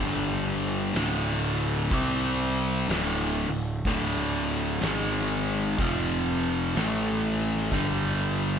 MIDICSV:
0, 0, Header, 1, 4, 480
1, 0, Start_track
1, 0, Key_signature, -1, "minor"
1, 0, Tempo, 967742
1, 1912, Time_signature, 4, 2, 24, 8
1, 4262, End_track
2, 0, Start_track
2, 0, Title_t, "Distorted electric guitar"
2, 0, Program_c, 0, 30
2, 0, Note_on_c, 0, 43, 106
2, 0, Note_on_c, 0, 50, 120
2, 0, Note_on_c, 0, 55, 120
2, 463, Note_off_c, 0, 43, 0
2, 465, Note_off_c, 0, 50, 0
2, 466, Note_off_c, 0, 55, 0
2, 468, Note_on_c, 0, 38, 91
2, 469, Note_on_c, 0, 45, 95
2, 471, Note_on_c, 0, 50, 110
2, 945, Note_off_c, 0, 38, 0
2, 945, Note_off_c, 0, 45, 0
2, 946, Note_off_c, 0, 50, 0
2, 950, Note_on_c, 0, 48, 88
2, 953, Note_on_c, 0, 55, 87
2, 956, Note_on_c, 0, 60, 100
2, 1426, Note_off_c, 0, 48, 0
2, 1427, Note_off_c, 0, 55, 0
2, 1429, Note_off_c, 0, 60, 0
2, 1433, Note_on_c, 0, 38, 107
2, 1435, Note_on_c, 0, 45, 117
2, 1437, Note_on_c, 0, 50, 110
2, 1722, Note_off_c, 0, 38, 0
2, 1723, Note_off_c, 0, 45, 0
2, 1723, Note_off_c, 0, 50, 0
2, 1730, Note_on_c, 0, 38, 72
2, 1731, Note_on_c, 0, 45, 83
2, 1876, Note_off_c, 0, 38, 0
2, 1876, Note_off_c, 0, 45, 0
2, 1917, Note_on_c, 0, 38, 101
2, 1919, Note_on_c, 0, 45, 116
2, 1919, Note_on_c, 0, 50, 122
2, 2389, Note_off_c, 0, 38, 0
2, 2390, Note_off_c, 0, 45, 0
2, 2390, Note_off_c, 0, 50, 0
2, 2392, Note_on_c, 0, 44, 93
2, 2395, Note_on_c, 0, 51, 109
2, 2397, Note_on_c, 0, 56, 97
2, 2867, Note_off_c, 0, 44, 0
2, 2868, Note_off_c, 0, 51, 0
2, 2869, Note_off_c, 0, 56, 0
2, 2872, Note_on_c, 0, 41, 90
2, 2875, Note_on_c, 0, 48, 77
2, 2876, Note_on_c, 0, 53, 97
2, 3346, Note_off_c, 0, 41, 0
2, 3348, Note_off_c, 0, 48, 0
2, 3348, Note_off_c, 0, 53, 0
2, 3349, Note_on_c, 0, 45, 106
2, 3353, Note_on_c, 0, 52, 101
2, 3355, Note_on_c, 0, 57, 122
2, 3825, Note_off_c, 0, 45, 0
2, 3826, Note_off_c, 0, 52, 0
2, 3828, Note_off_c, 0, 57, 0
2, 3831, Note_on_c, 0, 43, 104
2, 3834, Note_on_c, 0, 50, 113
2, 3836, Note_on_c, 0, 55, 116
2, 4262, Note_off_c, 0, 43, 0
2, 4262, Note_off_c, 0, 50, 0
2, 4262, Note_off_c, 0, 55, 0
2, 4262, End_track
3, 0, Start_track
3, 0, Title_t, "Picked electric bass"
3, 0, Program_c, 1, 34
3, 0, Note_on_c, 1, 31, 106
3, 449, Note_off_c, 1, 31, 0
3, 467, Note_on_c, 1, 26, 112
3, 930, Note_off_c, 1, 26, 0
3, 946, Note_on_c, 1, 36, 106
3, 1409, Note_off_c, 1, 36, 0
3, 1425, Note_on_c, 1, 26, 99
3, 1707, Note_off_c, 1, 26, 0
3, 1725, Note_on_c, 1, 26, 90
3, 1897, Note_off_c, 1, 26, 0
3, 1910, Note_on_c, 1, 26, 114
3, 2371, Note_off_c, 1, 26, 0
3, 2388, Note_on_c, 1, 32, 115
3, 2850, Note_off_c, 1, 32, 0
3, 2869, Note_on_c, 1, 29, 115
3, 3330, Note_off_c, 1, 29, 0
3, 3350, Note_on_c, 1, 33, 102
3, 3810, Note_off_c, 1, 33, 0
3, 3829, Note_on_c, 1, 31, 107
3, 4262, Note_off_c, 1, 31, 0
3, 4262, End_track
4, 0, Start_track
4, 0, Title_t, "Drums"
4, 285, Note_on_c, 9, 46, 75
4, 334, Note_off_c, 9, 46, 0
4, 467, Note_on_c, 9, 46, 93
4, 478, Note_on_c, 9, 38, 126
4, 517, Note_off_c, 9, 46, 0
4, 527, Note_off_c, 9, 38, 0
4, 769, Note_on_c, 9, 46, 68
4, 819, Note_off_c, 9, 46, 0
4, 949, Note_on_c, 9, 36, 110
4, 953, Note_on_c, 9, 46, 95
4, 999, Note_off_c, 9, 36, 0
4, 1003, Note_off_c, 9, 46, 0
4, 1251, Note_on_c, 9, 46, 67
4, 1300, Note_off_c, 9, 46, 0
4, 1434, Note_on_c, 9, 46, 92
4, 1444, Note_on_c, 9, 38, 125
4, 1483, Note_off_c, 9, 46, 0
4, 1494, Note_off_c, 9, 38, 0
4, 1730, Note_on_c, 9, 46, 76
4, 1780, Note_off_c, 9, 46, 0
4, 1910, Note_on_c, 9, 36, 109
4, 1910, Note_on_c, 9, 46, 84
4, 1960, Note_off_c, 9, 36, 0
4, 1960, Note_off_c, 9, 46, 0
4, 2210, Note_on_c, 9, 46, 63
4, 2260, Note_off_c, 9, 46, 0
4, 2388, Note_on_c, 9, 46, 89
4, 2398, Note_on_c, 9, 38, 122
4, 2437, Note_off_c, 9, 46, 0
4, 2448, Note_off_c, 9, 38, 0
4, 2688, Note_on_c, 9, 46, 63
4, 2737, Note_off_c, 9, 46, 0
4, 2870, Note_on_c, 9, 36, 124
4, 2870, Note_on_c, 9, 46, 84
4, 2919, Note_off_c, 9, 36, 0
4, 2919, Note_off_c, 9, 46, 0
4, 3167, Note_on_c, 9, 46, 69
4, 3216, Note_off_c, 9, 46, 0
4, 3348, Note_on_c, 9, 46, 92
4, 3359, Note_on_c, 9, 38, 109
4, 3398, Note_off_c, 9, 46, 0
4, 3408, Note_off_c, 9, 38, 0
4, 3646, Note_on_c, 9, 46, 71
4, 3696, Note_off_c, 9, 46, 0
4, 3749, Note_on_c, 9, 38, 38
4, 3799, Note_off_c, 9, 38, 0
4, 3827, Note_on_c, 9, 46, 89
4, 3829, Note_on_c, 9, 36, 111
4, 3877, Note_off_c, 9, 46, 0
4, 3879, Note_off_c, 9, 36, 0
4, 4127, Note_on_c, 9, 46, 65
4, 4176, Note_off_c, 9, 46, 0
4, 4262, End_track
0, 0, End_of_file